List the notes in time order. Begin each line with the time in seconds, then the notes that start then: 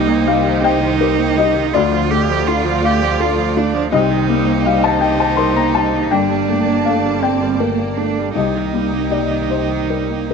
Already playing: C2 A#3 D#4 G4 C5 D#5
0.08 A#3
0.26 G3 G4 F5
0.45 D#3
0.62 C3 D#4 D#5 G5
0.81 D#3
1.00 G3 A#4
1.18 A#3
1.36 G3 G4 D#5
1.54 D#3
1.72 D2 D3 A3 F4 D5
1.91 F3
2.10 A3 G4
2.29 F3
2.47 D3 F4
2.65 F3
2.82 A3 G4 F5
3.02 F3
3.19 D3 F4 A4
3.37 F3
3.55 A3 D4 F4
3.74 F3
3.92 C2 C3 A#3 D#4 G4 C5 D#5
4.10 D#3
4.29 G3 A#3
4.47 A#3
4.66 G3 G4 F5
4.84 D#3 A5
5.01 C3 D#4 D#5 G5
5.20 D#3 A5
5.37 G3 A#4 C6
5.56 A#3 A#5
5.75 G3 G4 A5
5.93 D#3
6.11 G1 G2 D3 D4 D5 G5 A5
6.30 G3
6.48 A3 A#3
6.67 A#3
6.85 A3 A4 F5
7.05 G3
7.22 D3 C4 D5 G5
7.42 G3
7.59 A3 A#3 A#4
7.80 A#3
7.97 A3 D4 A4
8.17 G3
8.35 C2 C3 A#3 D#4 G4 D#5
8.55 D#3
8.73 G3 A#3
8.93 A#3
9.10 G3 G4 D5
9.30 D#3
9.49 C3 C5 D#5
9.70 D#3
9.90 G3 A#4
10.09 A#3
10.30 G3 G4 A#4